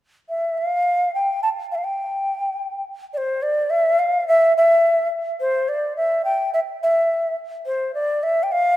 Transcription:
0, 0, Header, 1, 2, 480
1, 0, Start_track
1, 0, Tempo, 566572
1, 722, Time_signature, 2, 2, 24, 8
1, 7427, End_track
2, 0, Start_track
2, 0, Title_t, "Quena"
2, 0, Program_c, 0, 77
2, 247, Note_on_c, 0, 76, 67
2, 489, Note_on_c, 0, 77, 79
2, 501, Note_off_c, 0, 76, 0
2, 967, Note_off_c, 0, 77, 0
2, 970, Note_on_c, 0, 79, 69
2, 1191, Note_off_c, 0, 79, 0
2, 1210, Note_on_c, 0, 81, 73
2, 1263, Note_off_c, 0, 81, 0
2, 1455, Note_on_c, 0, 77, 71
2, 1483, Note_on_c, 0, 76, 64
2, 1496, Note_off_c, 0, 77, 0
2, 1506, Note_on_c, 0, 77, 66
2, 1519, Note_off_c, 0, 76, 0
2, 1560, Note_on_c, 0, 79, 69
2, 1572, Note_off_c, 0, 77, 0
2, 2404, Note_off_c, 0, 79, 0
2, 2655, Note_on_c, 0, 74, 68
2, 2690, Note_on_c, 0, 72, 74
2, 2698, Note_off_c, 0, 74, 0
2, 2902, Note_on_c, 0, 74, 78
2, 2915, Note_off_c, 0, 72, 0
2, 3136, Note_on_c, 0, 76, 78
2, 3148, Note_off_c, 0, 74, 0
2, 3381, Note_on_c, 0, 77, 87
2, 3394, Note_off_c, 0, 76, 0
2, 3614, Note_off_c, 0, 77, 0
2, 3624, Note_on_c, 0, 76, 98
2, 3839, Note_off_c, 0, 76, 0
2, 3875, Note_on_c, 0, 76, 80
2, 4308, Note_off_c, 0, 76, 0
2, 4578, Note_on_c, 0, 72, 79
2, 4817, Note_on_c, 0, 74, 80
2, 4830, Note_off_c, 0, 72, 0
2, 5049, Note_off_c, 0, 74, 0
2, 5054, Note_on_c, 0, 76, 84
2, 5273, Note_off_c, 0, 76, 0
2, 5292, Note_on_c, 0, 79, 92
2, 5512, Note_off_c, 0, 79, 0
2, 5537, Note_on_c, 0, 76, 84
2, 5589, Note_off_c, 0, 76, 0
2, 5787, Note_on_c, 0, 76, 75
2, 6222, Note_off_c, 0, 76, 0
2, 6490, Note_on_c, 0, 72, 82
2, 6709, Note_off_c, 0, 72, 0
2, 6729, Note_on_c, 0, 74, 79
2, 6974, Note_on_c, 0, 76, 86
2, 6987, Note_off_c, 0, 74, 0
2, 7144, Note_on_c, 0, 79, 68
2, 7156, Note_off_c, 0, 76, 0
2, 7216, Note_on_c, 0, 77, 99
2, 7229, Note_off_c, 0, 79, 0
2, 7427, Note_off_c, 0, 77, 0
2, 7427, End_track
0, 0, End_of_file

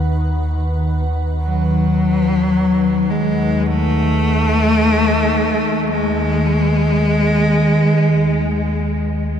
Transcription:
0, 0, Header, 1, 4, 480
1, 0, Start_track
1, 0, Tempo, 500000
1, 9022, End_track
2, 0, Start_track
2, 0, Title_t, "Ambient pad"
2, 0, Program_c, 0, 92
2, 0, Note_on_c, 0, 51, 81
2, 0, Note_on_c, 0, 71, 84
2, 0, Note_on_c, 0, 78, 80
2, 9022, Note_off_c, 0, 51, 0
2, 9022, Note_off_c, 0, 71, 0
2, 9022, Note_off_c, 0, 78, 0
2, 9022, End_track
3, 0, Start_track
3, 0, Title_t, "Cello"
3, 0, Program_c, 1, 42
3, 1369, Note_on_c, 1, 54, 106
3, 2974, Note_on_c, 1, 56, 99
3, 2988, Note_off_c, 1, 54, 0
3, 3520, Note_on_c, 1, 57, 118
3, 3535, Note_off_c, 1, 56, 0
3, 5645, Note_on_c, 1, 56, 107
3, 5659, Note_off_c, 1, 57, 0
3, 8905, Note_off_c, 1, 56, 0
3, 9022, End_track
4, 0, Start_track
4, 0, Title_t, "Synth drone"
4, 0, Program_c, 2, 95
4, 0, Note_on_c, 2, 39, 68
4, 0, Note_on_c, 2, 51, 70
4, 9022, Note_off_c, 2, 39, 0
4, 9022, Note_off_c, 2, 51, 0
4, 9022, End_track
0, 0, End_of_file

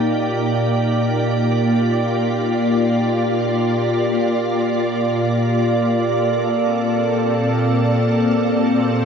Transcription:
0, 0, Header, 1, 3, 480
1, 0, Start_track
1, 0, Key_signature, -2, "major"
1, 0, Tempo, 500000
1, 8688, End_track
2, 0, Start_track
2, 0, Title_t, "Vibraphone"
2, 0, Program_c, 0, 11
2, 5799, Control_c, 0, 64, 127
2, 6403, Note_on_c, 0, 60, 65
2, 8429, Note_on_c, 0, 84, 56
2, 8688, Note_off_c, 0, 60, 0
2, 8688, Note_off_c, 0, 84, 0
2, 8688, End_track
3, 0, Start_track
3, 0, Title_t, "Ambient pad"
3, 0, Program_c, 1, 92
3, 0, Note_on_c, 1, 46, 56
3, 0, Note_on_c, 1, 58, 72
3, 0, Note_on_c, 1, 63, 83
3, 0, Note_on_c, 1, 67, 86
3, 0, Note_on_c, 1, 74, 70
3, 1290, Note_on_c, 1, 65, 76
3, 2586, Note_off_c, 1, 63, 0
3, 5847, Note_on_c, 1, 69, 85
3, 6546, Note_on_c, 1, 60, 89
3, 7234, Note_off_c, 1, 65, 0
3, 7673, Note_off_c, 1, 67, 0
3, 8688, Note_off_c, 1, 46, 0
3, 8688, Note_off_c, 1, 58, 0
3, 8688, Note_off_c, 1, 60, 0
3, 8688, Note_off_c, 1, 69, 0
3, 8688, Note_off_c, 1, 74, 0
3, 8688, End_track
0, 0, End_of_file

